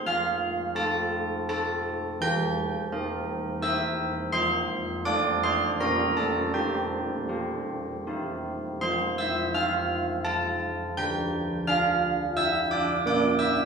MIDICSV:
0, 0, Header, 1, 2, 480
1, 0, Start_track
1, 0, Key_signature, -1, "major"
1, 0, Tempo, 716846
1, 39, Time_signature, 3, 2, 24, 8
1, 3878, Tempo, 749064
1, 5798, Tempo, 721154
1, 7238, Tempo, 700117
1, 9089, End_track
2, 0, Start_track
2, 0, Title_t, "Church bells"
2, 0, Program_c, 0, 14
2, 41, Note_on_c, 0, 53, 68
2, 44, Note_on_c, 0, 89, 99
2, 51, Note_on_c, 0, 77, 76
2, 494, Note_off_c, 0, 77, 0
2, 498, Note_off_c, 0, 89, 0
2, 501, Note_off_c, 0, 53, 0
2, 504, Note_on_c, 0, 69, 67
2, 508, Note_on_c, 0, 81, 124
2, 510, Note_on_c, 0, 60, 63
2, 959, Note_off_c, 0, 69, 0
2, 962, Note_off_c, 0, 60, 0
2, 963, Note_off_c, 0, 81, 0
2, 998, Note_on_c, 0, 81, 113
2, 1002, Note_on_c, 0, 69, 66
2, 1005, Note_on_c, 0, 60, 60
2, 1006, Note_off_c, 0, 81, 0
2, 1006, Note_on_c, 0, 81, 83
2, 1463, Note_off_c, 0, 69, 0
2, 1464, Note_off_c, 0, 60, 0
2, 1465, Note_off_c, 0, 81, 0
2, 1478, Note_on_c, 0, 52, 81
2, 1484, Note_on_c, 0, 91, 122
2, 1488, Note_on_c, 0, 79, 84
2, 1948, Note_off_c, 0, 52, 0
2, 1958, Note_on_c, 0, 60, 69
2, 1959, Note_on_c, 0, 70, 70
2, 2411, Note_off_c, 0, 60, 0
2, 2412, Note_off_c, 0, 70, 0
2, 2415, Note_off_c, 0, 91, 0
2, 2417, Note_off_c, 0, 79, 0
2, 2421, Note_on_c, 0, 60, 61
2, 2427, Note_on_c, 0, 88, 107
2, 2430, Note_on_c, 0, 76, 78
2, 2434, Note_on_c, 0, 70, 67
2, 2656, Note_off_c, 0, 76, 0
2, 2662, Note_off_c, 0, 88, 0
2, 2879, Note_off_c, 0, 60, 0
2, 2886, Note_off_c, 0, 70, 0
2, 2896, Note_on_c, 0, 84, 119
2, 2901, Note_on_c, 0, 53, 79
2, 2902, Note_on_c, 0, 72, 91
2, 3360, Note_off_c, 0, 72, 0
2, 3365, Note_off_c, 0, 84, 0
2, 3372, Note_off_c, 0, 53, 0
2, 3381, Note_on_c, 0, 60, 62
2, 3384, Note_on_c, 0, 86, 116
2, 3389, Note_on_c, 0, 69, 72
2, 3392, Note_on_c, 0, 74, 85
2, 3618, Note_off_c, 0, 74, 0
2, 3621, Note_off_c, 0, 86, 0
2, 3639, Note_on_c, 0, 84, 97
2, 3648, Note_on_c, 0, 72, 79
2, 3847, Note_off_c, 0, 60, 0
2, 3850, Note_off_c, 0, 69, 0
2, 3869, Note_off_c, 0, 72, 0
2, 3872, Note_off_c, 0, 84, 0
2, 3882, Note_on_c, 0, 58, 73
2, 3883, Note_on_c, 0, 67, 55
2, 3887, Note_on_c, 0, 82, 105
2, 3889, Note_on_c, 0, 62, 51
2, 3892, Note_on_c, 0, 70, 73
2, 4106, Note_off_c, 0, 70, 0
2, 4110, Note_off_c, 0, 82, 0
2, 4119, Note_on_c, 0, 81, 75
2, 4131, Note_on_c, 0, 69, 68
2, 4333, Note_off_c, 0, 67, 0
2, 4336, Note_off_c, 0, 62, 0
2, 4344, Note_off_c, 0, 58, 0
2, 4349, Note_off_c, 0, 69, 0
2, 4349, Note_off_c, 0, 81, 0
2, 4357, Note_on_c, 0, 79, 81
2, 4359, Note_on_c, 0, 60, 64
2, 4364, Note_on_c, 0, 67, 56
2, 4832, Note_off_c, 0, 60, 0
2, 4832, Note_off_c, 0, 67, 0
2, 4836, Note_on_c, 0, 65, 50
2, 4840, Note_on_c, 0, 67, 59
2, 5296, Note_off_c, 0, 65, 0
2, 5297, Note_off_c, 0, 67, 0
2, 5338, Note_on_c, 0, 64, 47
2, 5340, Note_on_c, 0, 67, 44
2, 5342, Note_on_c, 0, 60, 68
2, 5539, Note_off_c, 0, 79, 0
2, 5782, Note_off_c, 0, 64, 0
2, 5782, Note_off_c, 0, 67, 0
2, 5795, Note_off_c, 0, 60, 0
2, 5815, Note_on_c, 0, 84, 97
2, 5818, Note_on_c, 0, 53, 81
2, 5824, Note_on_c, 0, 72, 66
2, 6037, Note_off_c, 0, 72, 0
2, 6039, Note_off_c, 0, 84, 0
2, 6061, Note_on_c, 0, 88, 100
2, 6075, Note_on_c, 0, 76, 83
2, 6282, Note_off_c, 0, 76, 0
2, 6282, Note_off_c, 0, 88, 0
2, 6299, Note_on_c, 0, 60, 65
2, 6302, Note_on_c, 0, 89, 100
2, 6304, Note_on_c, 0, 77, 77
2, 6741, Note_off_c, 0, 77, 0
2, 6748, Note_off_c, 0, 89, 0
2, 6768, Note_on_c, 0, 81, 114
2, 6782, Note_off_c, 0, 81, 0
2, 6783, Note_on_c, 0, 81, 84
2, 7223, Note_off_c, 0, 53, 0
2, 7229, Note_off_c, 0, 81, 0
2, 7251, Note_off_c, 0, 60, 0
2, 7253, Note_on_c, 0, 91, 106
2, 7255, Note_on_c, 0, 50, 76
2, 7259, Note_on_c, 0, 79, 84
2, 7713, Note_off_c, 0, 79, 0
2, 7719, Note_off_c, 0, 91, 0
2, 7734, Note_on_c, 0, 62, 70
2, 7734, Note_on_c, 0, 89, 113
2, 7743, Note_on_c, 0, 77, 96
2, 8188, Note_off_c, 0, 77, 0
2, 8192, Note_off_c, 0, 89, 0
2, 8208, Note_on_c, 0, 88, 122
2, 8215, Note_on_c, 0, 76, 93
2, 8433, Note_off_c, 0, 76, 0
2, 8436, Note_off_c, 0, 88, 0
2, 8444, Note_on_c, 0, 86, 104
2, 8453, Note_on_c, 0, 74, 83
2, 8662, Note_off_c, 0, 50, 0
2, 8670, Note_off_c, 0, 74, 0
2, 8672, Note_off_c, 0, 86, 0
2, 8681, Note_on_c, 0, 58, 88
2, 8684, Note_off_c, 0, 62, 0
2, 8690, Note_on_c, 0, 86, 107
2, 8698, Note_on_c, 0, 74, 86
2, 8909, Note_on_c, 0, 88, 111
2, 8913, Note_off_c, 0, 74, 0
2, 8916, Note_off_c, 0, 86, 0
2, 8918, Note_on_c, 0, 76, 83
2, 9089, Note_off_c, 0, 58, 0
2, 9089, Note_off_c, 0, 76, 0
2, 9089, Note_off_c, 0, 88, 0
2, 9089, End_track
0, 0, End_of_file